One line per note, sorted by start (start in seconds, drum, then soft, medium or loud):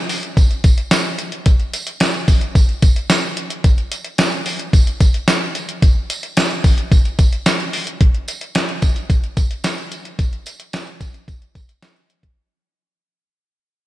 0.09 open hi-hat medium
0.09 tambourine medium
0.23 closed hi-hat soft
0.37 kick loud
0.37 closed hi-hat medium
0.37 tambourine medium
0.51 closed hi-hat soft
0.64 kick loud
0.64 closed hi-hat medium
0.64 tambourine medium
0.78 closed hi-hat medium
0.91 snare loud
0.91 closed hi-hat loud
0.91 tambourine medium
1.19 closed hi-hat medium
1.19 tambourine soft
1.32 closed hi-hat medium
1.46 kick loud
1.46 closed hi-hat medium
1.46 tambourine soft
1.60 closed hi-hat soft
1.73 closed hi-hat medium
1.73 tambourine medium
1.87 closed hi-hat medium
2.00 snare loud
2.00 closed hi-hat loud
2.00 tambourine medium
2.14 closed hi-hat soft
2.28 kick medium
2.28 open hi-hat medium
2.28 tambourine medium
2.41 closed hi-hat medium
2.55 kick loud
2.55 closed hi-hat medium
2.55 tambourine medium
2.69 closed hi-hat soft
2.82 kick loud
2.82 closed hi-hat medium
2.82 tambourine medium
2.96 closed hi-hat medium
3.10 snare loud
3.10 closed hi-hat loud
3.10 tambourine medium
3.37 closed hi-hat medium
3.50 closed hi-hat medium
3.64 kick loud
3.64 closed hi-hat medium
3.64 tambourine soft
3.78 closed hi-hat soft
3.92 closed hi-hat medium
3.92 tambourine medium
4.05 closed hi-hat medium
4.18 snare loud
4.18 closed hi-hat loud
4.18 tambourine medium
4.32 closed hi-hat soft
4.46 open hi-hat medium
4.46 tambourine medium
4.59 closed hi-hat medium
4.73 kick loud
4.73 closed hi-hat medium
4.73 tambourine medium
4.87 closed hi-hat soft
5.00 kick loud
5.00 closed hi-hat medium
5.00 tambourine medium
5.14 closed hi-hat medium
5.28 snare loud
5.28 closed hi-hat medium
5.28 tambourine loud
5.55 closed hi-hat medium
5.55 tambourine soft
5.69 closed hi-hat medium
5.82 kick loud
5.82 closed hi-hat loud
5.82 tambourine soft
6.10 closed hi-hat medium
6.10 tambourine medium
6.23 closed hi-hat medium
6.37 snare loud
6.37 closed hi-hat loud
6.37 tambourine medium
6.51 closed hi-hat soft
6.64 kick loud
6.64 open hi-hat medium
6.64 tambourine medium
6.78 closed hi-hat medium
6.92 kick loud
6.92 closed hi-hat medium
6.92 tambourine medium
7.05 closed hi-hat soft
7.19 kick loud
7.19 closed hi-hat medium
7.19 tambourine medium
7.33 closed hi-hat medium
7.46 snare loud
7.46 closed hi-hat medium
7.46 tambourine loud
7.60 closed hi-hat soft
7.73 open hi-hat medium
7.73 tambourine soft
7.87 closed hi-hat medium
8.01 kick loud
8.01 closed hi-hat medium
8.14 closed hi-hat soft
8.28 closed hi-hat medium
8.28 tambourine medium
8.41 closed hi-hat medium
8.55 snare loud
8.55 closed hi-hat medium
8.55 tambourine medium
8.69 closed hi-hat soft
8.82 kick medium
8.82 closed hi-hat medium
8.82 tambourine medium
8.96 closed hi-hat soft
9.10 kick loud
9.10 closed hi-hat medium
9.10 tambourine medium
9.24 closed hi-hat soft
9.37 kick loud
9.37 closed hi-hat medium
9.37 tambourine medium
9.51 closed hi-hat medium
9.64 snare loud
9.64 closed hi-hat medium
9.64 tambourine loud
9.78 closed hi-hat soft
9.91 closed hi-hat medium
9.91 tambourine soft
10.05 closed hi-hat medium
10.19 kick loud
10.19 closed hi-hat medium
10.19 tambourine soft
10.33 closed hi-hat soft
10.46 closed hi-hat medium
10.46 tambourine medium
10.60 closed hi-hat medium
10.73 snare loud
10.73 closed hi-hat medium
10.73 tambourine medium
10.87 closed hi-hat soft
11.01 kick medium
11.01 closed hi-hat medium
11.01 tambourine medium
11.14 closed hi-hat soft
11.28 kick loud
11.28 closed hi-hat medium
11.28 tambourine medium
11.42 closed hi-hat soft
11.55 kick medium
11.55 closed hi-hat medium
11.55 tambourine medium
11.69 closed hi-hat medium
11.82 snare loud
11.82 closed hi-hat medium
11.82 tambourine medium
11.96 closed hi-hat soft
12.10 closed hi-hat medium
12.23 kick medium
12.23 closed hi-hat medium